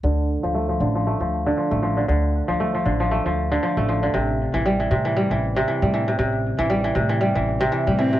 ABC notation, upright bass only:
X:1
M:4/4
L:1/16
Q:"Swing 16ths" 1/4=117
K:Dm
V:1 name="Upright bass" clef=bass
D,,2 z D,,2 z A,,,2 z D,,2 z2 A,,,2 z | D,,2 z D,,2 z A,,,2 z D,,2 z2 A,,,2 z | A,,,2 z A,,,2 z A,,2 z A,,,2 z2 A,,2 z | A,,,2 z A,,,2 z A,,2 z A,,,2 z2 A,,2 z |]